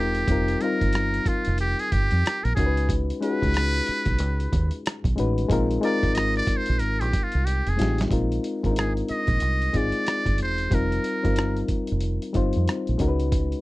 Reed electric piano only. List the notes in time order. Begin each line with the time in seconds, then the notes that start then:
Already playing: G#3 C4 D#4
0.00 F4 A#4
0.28 G3 C4 D#4 F4 A#4
0.61 G3 C4 D#4 F4
0.65 A#4
2.56 G#3 C#4 D#4 F#4 A#4
2.66 B4
3.20 G#3 C#4 D#4 F4 G#4
3.30 F#4
5.16 G#3 C#4 D#4 F#4 B4
5.49 G#3 C4 D#4 F4 A#4
5.81 G#3 C4 D#4 F4 A#4
7.77 G#3 C4 D#4 F4 G4
8.10 G#3 C4 D#4 F4 A#4
8.63 G#3 C4 D4 F4 A#4
8.71 D#4
9.73 G#3 C4 D#4 F4 G#4
10.70 G3 C4 D#4 F4 A#4
11.23 G3 C4 D#4 F4 A#4
12.33 G3 C4 D#4 F4 C5
12.98 G#3 C#4 D#4 F#4 A#4
13.08 B4